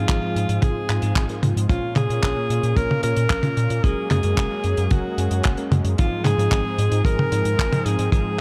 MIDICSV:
0, 0, Header, 1, 6, 480
1, 0, Start_track
1, 0, Tempo, 535714
1, 1521, Time_signature, 4, 2, 24, 8
1, 7533, End_track
2, 0, Start_track
2, 0, Title_t, "Alto saxophone"
2, 0, Program_c, 0, 65
2, 0, Note_on_c, 0, 65, 100
2, 557, Note_on_c, 0, 68, 90
2, 570, Note_off_c, 0, 65, 0
2, 1279, Note_off_c, 0, 68, 0
2, 1520, Note_on_c, 0, 65, 104
2, 1743, Note_off_c, 0, 65, 0
2, 1759, Note_on_c, 0, 68, 106
2, 2480, Note_on_c, 0, 70, 109
2, 2494, Note_off_c, 0, 68, 0
2, 2716, Note_off_c, 0, 70, 0
2, 2721, Note_on_c, 0, 70, 119
2, 3440, Note_on_c, 0, 68, 108
2, 3453, Note_off_c, 0, 70, 0
2, 3676, Note_off_c, 0, 68, 0
2, 3681, Note_on_c, 0, 68, 109
2, 4401, Note_on_c, 0, 66, 89
2, 4414, Note_off_c, 0, 68, 0
2, 5120, Note_off_c, 0, 66, 0
2, 5359, Note_on_c, 0, 65, 104
2, 5598, Note_on_c, 0, 68, 116
2, 5612, Note_off_c, 0, 65, 0
2, 6318, Note_on_c, 0, 70, 119
2, 6331, Note_off_c, 0, 68, 0
2, 7037, Note_on_c, 0, 68, 106
2, 7050, Note_off_c, 0, 70, 0
2, 7271, Note_off_c, 0, 68, 0
2, 7276, Note_on_c, 0, 68, 116
2, 7533, Note_off_c, 0, 68, 0
2, 7533, End_track
3, 0, Start_track
3, 0, Title_t, "Tine electric piano"
3, 0, Program_c, 1, 4
3, 0, Note_on_c, 1, 44, 92
3, 0, Note_on_c, 1, 53, 84
3, 0, Note_on_c, 1, 60, 88
3, 0, Note_on_c, 1, 63, 86
3, 0, Note_on_c, 1, 68, 97
3, 171, Note_off_c, 1, 44, 0
3, 171, Note_off_c, 1, 53, 0
3, 171, Note_off_c, 1, 60, 0
3, 171, Note_off_c, 1, 63, 0
3, 171, Note_off_c, 1, 68, 0
3, 200, Note_on_c, 1, 44, 87
3, 200, Note_on_c, 1, 53, 79
3, 200, Note_on_c, 1, 60, 79
3, 200, Note_on_c, 1, 63, 79
3, 200, Note_on_c, 1, 68, 95
3, 531, Note_off_c, 1, 44, 0
3, 531, Note_off_c, 1, 53, 0
3, 531, Note_off_c, 1, 60, 0
3, 531, Note_off_c, 1, 63, 0
3, 531, Note_off_c, 1, 68, 0
3, 560, Note_on_c, 1, 53, 80
3, 560, Note_on_c, 1, 63, 77
3, 560, Note_on_c, 1, 68, 86
3, 561, Note_on_c, 1, 44, 83
3, 561, Note_on_c, 1, 60, 78
3, 771, Note_off_c, 1, 53, 0
3, 771, Note_off_c, 1, 63, 0
3, 772, Note_off_c, 1, 44, 0
3, 772, Note_off_c, 1, 60, 0
3, 772, Note_off_c, 1, 68, 0
3, 919, Note_on_c, 1, 53, 89
3, 920, Note_on_c, 1, 44, 97
3, 920, Note_on_c, 1, 60, 94
3, 920, Note_on_c, 1, 63, 92
3, 920, Note_on_c, 1, 68, 111
3, 1131, Note_off_c, 1, 44, 0
3, 1131, Note_off_c, 1, 53, 0
3, 1131, Note_off_c, 1, 60, 0
3, 1131, Note_off_c, 1, 63, 0
3, 1131, Note_off_c, 1, 68, 0
3, 1159, Note_on_c, 1, 44, 72
3, 1159, Note_on_c, 1, 53, 68
3, 1160, Note_on_c, 1, 60, 69
3, 1160, Note_on_c, 1, 63, 66
3, 1160, Note_on_c, 1, 70, 79
3, 1324, Note_off_c, 1, 44, 0
3, 1324, Note_off_c, 1, 53, 0
3, 1324, Note_off_c, 1, 60, 0
3, 1324, Note_off_c, 1, 63, 0
3, 1324, Note_off_c, 1, 70, 0
3, 1519, Note_on_c, 1, 73, 108
3, 1520, Note_on_c, 1, 46, 96
3, 1520, Note_on_c, 1, 58, 87
3, 1520, Note_on_c, 1, 61, 86
3, 1520, Note_on_c, 1, 65, 84
3, 1851, Note_off_c, 1, 46, 0
3, 1851, Note_off_c, 1, 58, 0
3, 1851, Note_off_c, 1, 61, 0
3, 1851, Note_off_c, 1, 65, 0
3, 1851, Note_off_c, 1, 73, 0
3, 1880, Note_on_c, 1, 46, 89
3, 1880, Note_on_c, 1, 58, 80
3, 1880, Note_on_c, 1, 61, 81
3, 1880, Note_on_c, 1, 65, 86
3, 1880, Note_on_c, 1, 73, 98
3, 2091, Note_off_c, 1, 46, 0
3, 2091, Note_off_c, 1, 58, 0
3, 2091, Note_off_c, 1, 61, 0
3, 2091, Note_off_c, 1, 65, 0
3, 2091, Note_off_c, 1, 73, 0
3, 2120, Note_on_c, 1, 46, 84
3, 2120, Note_on_c, 1, 58, 74
3, 2120, Note_on_c, 1, 61, 74
3, 2120, Note_on_c, 1, 65, 77
3, 2120, Note_on_c, 1, 73, 90
3, 2451, Note_off_c, 1, 46, 0
3, 2451, Note_off_c, 1, 58, 0
3, 2451, Note_off_c, 1, 61, 0
3, 2451, Note_off_c, 1, 65, 0
3, 2451, Note_off_c, 1, 73, 0
3, 2480, Note_on_c, 1, 46, 86
3, 2480, Note_on_c, 1, 58, 78
3, 2480, Note_on_c, 1, 61, 75
3, 2481, Note_on_c, 1, 65, 77
3, 2481, Note_on_c, 1, 73, 95
3, 2691, Note_off_c, 1, 46, 0
3, 2691, Note_off_c, 1, 58, 0
3, 2691, Note_off_c, 1, 61, 0
3, 2692, Note_off_c, 1, 65, 0
3, 2692, Note_off_c, 1, 73, 0
3, 2720, Note_on_c, 1, 46, 76
3, 2720, Note_on_c, 1, 58, 71
3, 2720, Note_on_c, 1, 61, 70
3, 2720, Note_on_c, 1, 65, 66
3, 2720, Note_on_c, 1, 73, 86
3, 2885, Note_off_c, 1, 46, 0
3, 2885, Note_off_c, 1, 58, 0
3, 2885, Note_off_c, 1, 61, 0
3, 2885, Note_off_c, 1, 65, 0
3, 2885, Note_off_c, 1, 73, 0
3, 3080, Note_on_c, 1, 46, 91
3, 3080, Note_on_c, 1, 58, 85
3, 3080, Note_on_c, 1, 61, 83
3, 3080, Note_on_c, 1, 65, 81
3, 3080, Note_on_c, 1, 73, 101
3, 3411, Note_off_c, 1, 58, 0
3, 3411, Note_off_c, 1, 61, 0
3, 3411, Note_off_c, 1, 65, 0
3, 3411, Note_off_c, 1, 73, 0
3, 3412, Note_off_c, 1, 46, 0
3, 3440, Note_on_c, 1, 56, 99
3, 3440, Note_on_c, 1, 61, 88
3, 3440, Note_on_c, 1, 66, 82
3, 3440, Note_on_c, 1, 70, 109
3, 3771, Note_off_c, 1, 56, 0
3, 3771, Note_off_c, 1, 61, 0
3, 3771, Note_off_c, 1, 66, 0
3, 3771, Note_off_c, 1, 70, 0
3, 3800, Note_on_c, 1, 56, 94
3, 3800, Note_on_c, 1, 61, 79
3, 3800, Note_on_c, 1, 70, 96
3, 3801, Note_on_c, 1, 66, 83
3, 4011, Note_off_c, 1, 61, 0
3, 4011, Note_off_c, 1, 70, 0
3, 4012, Note_off_c, 1, 56, 0
3, 4012, Note_off_c, 1, 66, 0
3, 4041, Note_on_c, 1, 56, 84
3, 4041, Note_on_c, 1, 61, 79
3, 4041, Note_on_c, 1, 66, 80
3, 4041, Note_on_c, 1, 70, 95
3, 4372, Note_off_c, 1, 56, 0
3, 4372, Note_off_c, 1, 61, 0
3, 4372, Note_off_c, 1, 66, 0
3, 4372, Note_off_c, 1, 70, 0
3, 4400, Note_on_c, 1, 61, 73
3, 4401, Note_on_c, 1, 56, 79
3, 4401, Note_on_c, 1, 66, 76
3, 4401, Note_on_c, 1, 70, 92
3, 4612, Note_off_c, 1, 56, 0
3, 4612, Note_off_c, 1, 61, 0
3, 4612, Note_off_c, 1, 66, 0
3, 4612, Note_off_c, 1, 70, 0
3, 4640, Note_on_c, 1, 56, 75
3, 4640, Note_on_c, 1, 61, 68
3, 4640, Note_on_c, 1, 66, 72
3, 4640, Note_on_c, 1, 70, 87
3, 4805, Note_off_c, 1, 56, 0
3, 4805, Note_off_c, 1, 61, 0
3, 4805, Note_off_c, 1, 66, 0
3, 4805, Note_off_c, 1, 70, 0
3, 5000, Note_on_c, 1, 56, 94
3, 5000, Note_on_c, 1, 61, 85
3, 5000, Note_on_c, 1, 66, 79
3, 5000, Note_on_c, 1, 70, 102
3, 5331, Note_off_c, 1, 56, 0
3, 5331, Note_off_c, 1, 61, 0
3, 5331, Note_off_c, 1, 66, 0
3, 5331, Note_off_c, 1, 70, 0
3, 5359, Note_on_c, 1, 44, 97
3, 5359, Note_on_c, 1, 68, 106
3, 5360, Note_on_c, 1, 53, 92
3, 5360, Note_on_c, 1, 60, 87
3, 5360, Note_on_c, 1, 63, 84
3, 5691, Note_off_c, 1, 44, 0
3, 5691, Note_off_c, 1, 53, 0
3, 5691, Note_off_c, 1, 60, 0
3, 5691, Note_off_c, 1, 63, 0
3, 5691, Note_off_c, 1, 68, 0
3, 5720, Note_on_c, 1, 44, 89
3, 5720, Note_on_c, 1, 53, 86
3, 5720, Note_on_c, 1, 60, 85
3, 5720, Note_on_c, 1, 68, 104
3, 5721, Note_on_c, 1, 63, 87
3, 5931, Note_off_c, 1, 68, 0
3, 5932, Note_off_c, 1, 44, 0
3, 5932, Note_off_c, 1, 53, 0
3, 5932, Note_off_c, 1, 60, 0
3, 5932, Note_off_c, 1, 63, 0
3, 5961, Note_on_c, 1, 44, 84
3, 5961, Note_on_c, 1, 53, 80
3, 5961, Note_on_c, 1, 60, 80
3, 5961, Note_on_c, 1, 63, 75
3, 5961, Note_on_c, 1, 68, 95
3, 6292, Note_off_c, 1, 44, 0
3, 6292, Note_off_c, 1, 53, 0
3, 6292, Note_off_c, 1, 60, 0
3, 6292, Note_off_c, 1, 63, 0
3, 6292, Note_off_c, 1, 68, 0
3, 6320, Note_on_c, 1, 44, 89
3, 6320, Note_on_c, 1, 53, 79
3, 6320, Note_on_c, 1, 60, 75
3, 6320, Note_on_c, 1, 63, 79
3, 6320, Note_on_c, 1, 68, 96
3, 6531, Note_off_c, 1, 44, 0
3, 6531, Note_off_c, 1, 53, 0
3, 6531, Note_off_c, 1, 60, 0
3, 6531, Note_off_c, 1, 63, 0
3, 6531, Note_off_c, 1, 68, 0
3, 6560, Note_on_c, 1, 44, 79
3, 6560, Note_on_c, 1, 53, 70
3, 6560, Note_on_c, 1, 60, 69
3, 6560, Note_on_c, 1, 63, 66
3, 6560, Note_on_c, 1, 68, 85
3, 6724, Note_off_c, 1, 60, 0
3, 6725, Note_off_c, 1, 44, 0
3, 6725, Note_off_c, 1, 53, 0
3, 6725, Note_off_c, 1, 63, 0
3, 6725, Note_off_c, 1, 68, 0
3, 6920, Note_on_c, 1, 44, 95
3, 6920, Note_on_c, 1, 60, 86
3, 6920, Note_on_c, 1, 63, 84
3, 6920, Note_on_c, 1, 68, 100
3, 6921, Note_on_c, 1, 53, 81
3, 7251, Note_off_c, 1, 60, 0
3, 7252, Note_off_c, 1, 44, 0
3, 7252, Note_off_c, 1, 53, 0
3, 7252, Note_off_c, 1, 63, 0
3, 7252, Note_off_c, 1, 68, 0
3, 7280, Note_on_c, 1, 44, 96
3, 7280, Note_on_c, 1, 63, 88
3, 7280, Note_on_c, 1, 68, 104
3, 7281, Note_on_c, 1, 53, 88
3, 7281, Note_on_c, 1, 60, 88
3, 7533, Note_off_c, 1, 44, 0
3, 7533, Note_off_c, 1, 53, 0
3, 7533, Note_off_c, 1, 60, 0
3, 7533, Note_off_c, 1, 63, 0
3, 7533, Note_off_c, 1, 68, 0
3, 7533, End_track
4, 0, Start_track
4, 0, Title_t, "Analog synth pad"
4, 0, Program_c, 2, 89
4, 0, Note_on_c, 2, 53, 78
4, 0, Note_on_c, 2, 56, 73
4, 0, Note_on_c, 2, 60, 74
4, 0, Note_on_c, 2, 65, 74
4, 0, Note_on_c, 2, 68, 82
4, 1483, Note_off_c, 2, 53, 0
4, 1484, Note_off_c, 2, 60, 0
4, 1485, Note_off_c, 2, 56, 0
4, 1485, Note_off_c, 2, 68, 0
4, 1520, Note_on_c, 2, 58, 77
4, 1521, Note_on_c, 2, 61, 77
4, 3403, Note_off_c, 2, 65, 0
4, 3421, Note_off_c, 2, 61, 0
4, 3440, Note_on_c, 2, 54, 74
4, 3440, Note_on_c, 2, 61, 68
4, 3440, Note_on_c, 2, 68, 88
4, 3441, Note_on_c, 2, 56, 73
4, 5324, Note_off_c, 2, 58, 0
4, 5341, Note_off_c, 2, 54, 0
4, 5341, Note_off_c, 2, 61, 0
4, 5341, Note_off_c, 2, 68, 0
4, 5360, Note_on_c, 2, 53, 79
4, 5360, Note_on_c, 2, 60, 73
4, 5360, Note_on_c, 2, 63, 72
4, 5360, Note_on_c, 2, 68, 88
4, 7533, Note_off_c, 2, 53, 0
4, 7533, Note_off_c, 2, 56, 0
4, 7533, Note_off_c, 2, 60, 0
4, 7533, Note_off_c, 2, 63, 0
4, 7533, Note_off_c, 2, 68, 0
4, 7533, End_track
5, 0, Start_track
5, 0, Title_t, "Analog synth bass"
5, 0, Program_c, 3, 38
5, 81, Note_on_c, 3, 32, 80
5, 173, Note_off_c, 3, 32, 0
5, 320, Note_on_c, 3, 44, 76
5, 412, Note_off_c, 3, 44, 0
5, 440, Note_on_c, 3, 44, 82
5, 532, Note_off_c, 3, 44, 0
5, 562, Note_on_c, 3, 32, 91
5, 653, Note_off_c, 3, 32, 0
5, 800, Note_on_c, 3, 44, 90
5, 892, Note_off_c, 3, 44, 0
5, 918, Note_on_c, 3, 44, 88
5, 1011, Note_off_c, 3, 44, 0
5, 1037, Note_on_c, 3, 32, 89
5, 1131, Note_off_c, 3, 32, 0
5, 1280, Note_on_c, 3, 44, 94
5, 1372, Note_off_c, 3, 44, 0
5, 1400, Note_on_c, 3, 44, 96
5, 1492, Note_off_c, 3, 44, 0
5, 1518, Note_on_c, 3, 34, 100
5, 1611, Note_off_c, 3, 34, 0
5, 1759, Note_on_c, 3, 46, 88
5, 1852, Note_off_c, 3, 46, 0
5, 1880, Note_on_c, 3, 46, 94
5, 1972, Note_off_c, 3, 46, 0
5, 1999, Note_on_c, 3, 34, 81
5, 2092, Note_off_c, 3, 34, 0
5, 2240, Note_on_c, 3, 46, 81
5, 2332, Note_off_c, 3, 46, 0
5, 2358, Note_on_c, 3, 46, 83
5, 2451, Note_off_c, 3, 46, 0
5, 2478, Note_on_c, 3, 34, 88
5, 2571, Note_off_c, 3, 34, 0
5, 2719, Note_on_c, 3, 46, 89
5, 2812, Note_off_c, 3, 46, 0
5, 2839, Note_on_c, 3, 46, 89
5, 2932, Note_off_c, 3, 46, 0
5, 2957, Note_on_c, 3, 34, 92
5, 3051, Note_off_c, 3, 34, 0
5, 3199, Note_on_c, 3, 46, 93
5, 3292, Note_off_c, 3, 46, 0
5, 3319, Note_on_c, 3, 46, 88
5, 3412, Note_off_c, 3, 46, 0
5, 3440, Note_on_c, 3, 30, 102
5, 3532, Note_off_c, 3, 30, 0
5, 3679, Note_on_c, 3, 42, 87
5, 3772, Note_off_c, 3, 42, 0
5, 3798, Note_on_c, 3, 42, 94
5, 3891, Note_off_c, 3, 42, 0
5, 3919, Note_on_c, 3, 30, 80
5, 4012, Note_off_c, 3, 30, 0
5, 4159, Note_on_c, 3, 42, 81
5, 4252, Note_off_c, 3, 42, 0
5, 4279, Note_on_c, 3, 42, 82
5, 4372, Note_off_c, 3, 42, 0
5, 4400, Note_on_c, 3, 30, 92
5, 4492, Note_off_c, 3, 30, 0
5, 4639, Note_on_c, 3, 42, 86
5, 4732, Note_off_c, 3, 42, 0
5, 4758, Note_on_c, 3, 42, 83
5, 4851, Note_off_c, 3, 42, 0
5, 4886, Note_on_c, 3, 30, 90
5, 4975, Note_off_c, 3, 30, 0
5, 5117, Note_on_c, 3, 42, 96
5, 5211, Note_off_c, 3, 42, 0
5, 5237, Note_on_c, 3, 42, 88
5, 5331, Note_off_c, 3, 42, 0
5, 5367, Note_on_c, 3, 32, 99
5, 5456, Note_off_c, 3, 32, 0
5, 5597, Note_on_c, 3, 44, 91
5, 5691, Note_off_c, 3, 44, 0
5, 5718, Note_on_c, 3, 44, 97
5, 5811, Note_off_c, 3, 44, 0
5, 5838, Note_on_c, 3, 32, 77
5, 5931, Note_off_c, 3, 32, 0
5, 6077, Note_on_c, 3, 44, 81
5, 6171, Note_off_c, 3, 44, 0
5, 6197, Note_on_c, 3, 44, 83
5, 6291, Note_off_c, 3, 44, 0
5, 6314, Note_on_c, 3, 32, 92
5, 6409, Note_off_c, 3, 32, 0
5, 6557, Note_on_c, 3, 44, 91
5, 6651, Note_off_c, 3, 44, 0
5, 6677, Note_on_c, 3, 44, 82
5, 6771, Note_off_c, 3, 44, 0
5, 6800, Note_on_c, 3, 32, 88
5, 6892, Note_off_c, 3, 32, 0
5, 7040, Note_on_c, 3, 44, 100
5, 7132, Note_off_c, 3, 44, 0
5, 7159, Note_on_c, 3, 44, 85
5, 7252, Note_off_c, 3, 44, 0
5, 7278, Note_on_c, 3, 32, 99
5, 7371, Note_off_c, 3, 32, 0
5, 7533, End_track
6, 0, Start_track
6, 0, Title_t, "Drums"
6, 78, Note_on_c, 9, 42, 80
6, 79, Note_on_c, 9, 39, 123
6, 81, Note_on_c, 9, 36, 107
6, 167, Note_off_c, 9, 42, 0
6, 169, Note_off_c, 9, 39, 0
6, 171, Note_off_c, 9, 36, 0
6, 326, Note_on_c, 9, 42, 86
6, 416, Note_off_c, 9, 42, 0
6, 440, Note_on_c, 9, 42, 71
6, 529, Note_off_c, 9, 42, 0
6, 556, Note_on_c, 9, 48, 55
6, 557, Note_on_c, 9, 42, 89
6, 561, Note_on_c, 9, 36, 122
6, 646, Note_off_c, 9, 48, 0
6, 647, Note_off_c, 9, 42, 0
6, 651, Note_off_c, 9, 36, 0
6, 800, Note_on_c, 9, 42, 77
6, 802, Note_on_c, 9, 39, 71
6, 889, Note_off_c, 9, 42, 0
6, 892, Note_off_c, 9, 39, 0
6, 914, Note_on_c, 9, 42, 58
6, 1004, Note_off_c, 9, 42, 0
6, 1037, Note_on_c, 9, 36, 105
6, 1040, Note_on_c, 9, 39, 127
6, 1041, Note_on_c, 9, 42, 85
6, 1127, Note_off_c, 9, 36, 0
6, 1129, Note_off_c, 9, 39, 0
6, 1130, Note_off_c, 9, 42, 0
6, 1156, Note_on_c, 9, 42, 55
6, 1246, Note_off_c, 9, 42, 0
6, 1280, Note_on_c, 9, 48, 80
6, 1282, Note_on_c, 9, 42, 89
6, 1370, Note_off_c, 9, 48, 0
6, 1371, Note_off_c, 9, 42, 0
6, 1408, Note_on_c, 9, 42, 69
6, 1498, Note_off_c, 9, 42, 0
6, 1518, Note_on_c, 9, 36, 121
6, 1522, Note_on_c, 9, 42, 80
6, 1608, Note_off_c, 9, 36, 0
6, 1612, Note_off_c, 9, 42, 0
6, 1755, Note_on_c, 9, 39, 47
6, 1755, Note_on_c, 9, 48, 86
6, 1759, Note_on_c, 9, 42, 86
6, 1844, Note_off_c, 9, 39, 0
6, 1845, Note_off_c, 9, 48, 0
6, 1849, Note_off_c, 9, 42, 0
6, 1885, Note_on_c, 9, 42, 62
6, 1975, Note_off_c, 9, 42, 0
6, 1999, Note_on_c, 9, 36, 94
6, 1999, Note_on_c, 9, 39, 121
6, 2001, Note_on_c, 9, 42, 88
6, 2089, Note_off_c, 9, 36, 0
6, 2089, Note_off_c, 9, 39, 0
6, 2090, Note_off_c, 9, 42, 0
6, 2243, Note_on_c, 9, 42, 84
6, 2333, Note_off_c, 9, 42, 0
6, 2360, Note_on_c, 9, 42, 58
6, 2450, Note_off_c, 9, 42, 0
6, 2478, Note_on_c, 9, 36, 114
6, 2480, Note_on_c, 9, 42, 88
6, 2567, Note_off_c, 9, 36, 0
6, 2569, Note_off_c, 9, 42, 0
6, 2606, Note_on_c, 9, 48, 62
6, 2696, Note_off_c, 9, 48, 0
6, 2715, Note_on_c, 9, 42, 97
6, 2804, Note_off_c, 9, 42, 0
6, 2836, Note_on_c, 9, 42, 67
6, 2926, Note_off_c, 9, 42, 0
6, 2956, Note_on_c, 9, 39, 127
6, 2957, Note_on_c, 9, 36, 115
6, 2959, Note_on_c, 9, 42, 93
6, 3046, Note_off_c, 9, 36, 0
6, 3046, Note_off_c, 9, 39, 0
6, 3049, Note_off_c, 9, 42, 0
6, 3072, Note_on_c, 9, 48, 80
6, 3078, Note_on_c, 9, 42, 57
6, 3162, Note_off_c, 9, 48, 0
6, 3167, Note_off_c, 9, 42, 0
6, 3199, Note_on_c, 9, 42, 81
6, 3289, Note_off_c, 9, 42, 0
6, 3317, Note_on_c, 9, 42, 71
6, 3407, Note_off_c, 9, 42, 0
6, 3440, Note_on_c, 9, 36, 124
6, 3446, Note_on_c, 9, 42, 83
6, 3529, Note_off_c, 9, 36, 0
6, 3536, Note_off_c, 9, 42, 0
6, 3679, Note_on_c, 9, 39, 46
6, 3681, Note_on_c, 9, 48, 81
6, 3682, Note_on_c, 9, 42, 92
6, 3768, Note_off_c, 9, 39, 0
6, 3771, Note_off_c, 9, 42, 0
6, 3771, Note_off_c, 9, 48, 0
6, 3791, Note_on_c, 9, 42, 66
6, 3880, Note_off_c, 9, 42, 0
6, 3918, Note_on_c, 9, 42, 86
6, 3919, Note_on_c, 9, 36, 98
6, 3923, Note_on_c, 9, 39, 119
6, 4007, Note_off_c, 9, 42, 0
6, 4009, Note_off_c, 9, 36, 0
6, 4012, Note_off_c, 9, 39, 0
6, 4154, Note_on_c, 9, 42, 76
6, 4244, Note_off_c, 9, 42, 0
6, 4277, Note_on_c, 9, 42, 64
6, 4366, Note_off_c, 9, 42, 0
6, 4396, Note_on_c, 9, 42, 85
6, 4400, Note_on_c, 9, 36, 114
6, 4403, Note_on_c, 9, 48, 60
6, 4485, Note_off_c, 9, 42, 0
6, 4490, Note_off_c, 9, 36, 0
6, 4493, Note_off_c, 9, 48, 0
6, 4643, Note_on_c, 9, 42, 99
6, 4732, Note_off_c, 9, 42, 0
6, 4757, Note_on_c, 9, 42, 66
6, 4847, Note_off_c, 9, 42, 0
6, 4870, Note_on_c, 9, 42, 100
6, 4881, Note_on_c, 9, 39, 118
6, 4887, Note_on_c, 9, 36, 110
6, 4960, Note_off_c, 9, 42, 0
6, 4970, Note_off_c, 9, 39, 0
6, 4976, Note_off_c, 9, 36, 0
6, 4994, Note_on_c, 9, 42, 58
6, 5084, Note_off_c, 9, 42, 0
6, 5122, Note_on_c, 9, 48, 78
6, 5124, Note_on_c, 9, 42, 77
6, 5212, Note_off_c, 9, 48, 0
6, 5213, Note_off_c, 9, 42, 0
6, 5238, Note_on_c, 9, 42, 73
6, 5328, Note_off_c, 9, 42, 0
6, 5361, Note_on_c, 9, 42, 87
6, 5367, Note_on_c, 9, 36, 119
6, 5451, Note_off_c, 9, 42, 0
6, 5457, Note_off_c, 9, 36, 0
6, 5597, Note_on_c, 9, 48, 78
6, 5600, Note_on_c, 9, 39, 49
6, 5603, Note_on_c, 9, 42, 98
6, 5687, Note_off_c, 9, 48, 0
6, 5690, Note_off_c, 9, 39, 0
6, 5692, Note_off_c, 9, 42, 0
6, 5729, Note_on_c, 9, 42, 60
6, 5818, Note_off_c, 9, 42, 0
6, 5838, Note_on_c, 9, 36, 102
6, 5839, Note_on_c, 9, 39, 107
6, 5839, Note_on_c, 9, 42, 80
6, 5928, Note_off_c, 9, 36, 0
6, 5928, Note_off_c, 9, 39, 0
6, 5928, Note_off_c, 9, 42, 0
6, 6079, Note_on_c, 9, 42, 83
6, 6169, Note_off_c, 9, 42, 0
6, 6197, Note_on_c, 9, 42, 67
6, 6287, Note_off_c, 9, 42, 0
6, 6314, Note_on_c, 9, 36, 115
6, 6324, Note_on_c, 9, 42, 92
6, 6404, Note_off_c, 9, 36, 0
6, 6414, Note_off_c, 9, 42, 0
6, 6443, Note_on_c, 9, 48, 69
6, 6532, Note_off_c, 9, 48, 0
6, 6559, Note_on_c, 9, 42, 94
6, 6649, Note_off_c, 9, 42, 0
6, 6677, Note_on_c, 9, 42, 62
6, 6767, Note_off_c, 9, 42, 0
6, 6800, Note_on_c, 9, 36, 91
6, 6804, Note_on_c, 9, 42, 87
6, 6806, Note_on_c, 9, 39, 119
6, 6889, Note_off_c, 9, 36, 0
6, 6894, Note_off_c, 9, 42, 0
6, 6896, Note_off_c, 9, 39, 0
6, 6922, Note_on_c, 9, 48, 81
6, 6924, Note_on_c, 9, 42, 57
6, 7012, Note_off_c, 9, 48, 0
6, 7013, Note_off_c, 9, 42, 0
6, 7041, Note_on_c, 9, 42, 90
6, 7131, Note_off_c, 9, 42, 0
6, 7158, Note_on_c, 9, 42, 73
6, 7247, Note_off_c, 9, 42, 0
6, 7278, Note_on_c, 9, 36, 110
6, 7283, Note_on_c, 9, 42, 85
6, 7368, Note_off_c, 9, 36, 0
6, 7372, Note_off_c, 9, 42, 0
6, 7533, End_track
0, 0, End_of_file